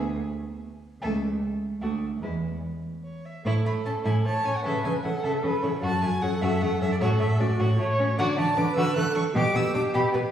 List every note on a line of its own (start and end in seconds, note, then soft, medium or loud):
0.00 0.16 D2 medium
1.01 1.35 C#2 medium
1.01 1.21 A3 medium
1.01 1.20 A4 medium
1.01 1.20 E5 medium
1.81 2.15 D2 soft
1.81 2.00 A3 medium
1.81 2.00 F#4 soft
1.81 2.00 D5 soft
2.22 2.56 E2 soft
2.22 2.41 G#3 soft
2.22 2.42 E4 soft
2.22 2.41 B4 soft
3.04 3.26 C#5 medium
3.25 3.44 E5 medium
3.45 3.53 A2 medium
3.45 3.64 E4 medium
3.45 4.27 A4 medium
3.45 3.53 C#6 loud
3.65 3.73 A2 medium
3.65 3.74 A3 medium
3.65 3.74 B5 loud
3.85 3.93 A2 medium
3.85 3.93 C#4 medium
3.85 3.93 A5 medium
4.04 4.13 A2 medium
4.04 4.23 E4 medium
4.04 4.13 G#5 medium
4.25 4.33 A2 medium
4.25 4.33 A3 medium
4.25 4.65 C#5 medium
4.25 4.47 A5 loud
4.45 4.53 A2 medium
4.45 4.53 C#4 medium
4.45 4.57 G#5 loud
4.56 4.64 F#5 medium
4.64 4.73 C#3 medium
4.64 4.83 A4 medium
4.64 5.06 B4 medium
4.64 4.84 E5 loud
4.84 4.93 C#3 medium
4.84 4.92 C#4 medium
4.84 4.92 G#5 medium
5.04 5.13 C#3 medium
5.04 5.12 E4 medium
5.04 5.82 A4 medium
5.04 5.24 F#5 medium
5.23 5.32 C#3 medium
5.23 5.42 A4 medium
5.23 5.32 E5 medium
5.43 5.51 C#3 medium
5.43 5.51 C#4 medium
5.43 5.64 B4 loud
5.63 5.71 C#3 medium
5.63 5.71 E4 medium
5.63 5.81 C#5 medium
5.82 5.91 F#2 medium
5.82 6.01 F#4 medium
5.82 6.24 F#4 medium
5.82 6.03 A5 loud
6.02 6.10 F#2 medium
6.02 6.10 A3 medium
6.02 6.23 G#5 loud
6.22 6.30 F#2 medium
6.22 6.31 C#4 medium
6.22 7.00 A4 medium
6.22 6.43 F#5 loud
6.41 6.50 F#2 medium
6.41 6.61 F#4 medium
6.41 6.63 E5 loud
6.61 6.69 F#2 medium
6.61 6.69 A3 medium
6.61 6.80 F#5 loud
6.81 6.89 F#2 medium
6.81 6.89 C#4 medium
6.81 6.91 E5 loud
6.92 6.95 D5 loud
7.01 7.09 A2 loud
7.01 7.19 F#4 medium
7.01 7.42 A4 medium
7.01 7.09 C#5 loud
7.20 7.29 A2 medium
7.20 7.28 A3 medium
7.20 7.41 E5 loud
7.39 7.48 A2 medium
7.39 7.47 C#4 medium
7.39 7.78 F#4 medium
7.39 7.62 D5 medium
7.59 7.67 A2 loud
7.59 7.78 F#4 medium
7.59 7.80 C#5 loud
7.79 7.87 A2 medium
7.79 7.87 A3 medium
7.79 8.17 C#5 loud
7.99 8.07 A2 medium
7.99 8.07 C#4 medium
8.18 8.26 D3 loud
8.18 8.37 F#4 loud
8.18 8.57 D5 loud
8.18 8.26 F#5 loud
8.38 8.45 D3 medium
8.38 8.46 A3 medium
8.38 8.58 A5 loud
8.57 8.65 D3 medium
8.57 8.65 D4 medium
8.57 8.98 B4 loud
8.57 8.75 D6 loud
8.76 8.84 D3 loud
8.76 8.95 F#4 medium
8.76 8.95 E6 loud
8.96 9.04 D3 medium
8.96 9.04 A3 medium
8.96 9.35 A4 medium
8.96 9.15 F#6 loud
9.16 9.24 D3 medium
9.16 9.24 D4 medium
9.16 9.24 C#6 loud
9.35 9.43 B2 loud
9.35 9.54 G4 medium
9.35 10.31 G4 loud
9.35 9.57 D6 loud
9.55 9.63 B2 medium
9.55 9.63 B3 medium
9.55 9.73 E6 loud
9.74 9.82 B2 medium
9.74 9.82 D4 medium
9.74 9.82 D6 loud
9.94 10.02 B2 loud
9.94 10.12 G4 medium
9.94 10.02 B5 loud
10.12 10.22 B2 medium
10.12 10.20 B3 medium
10.12 10.22 B4 loud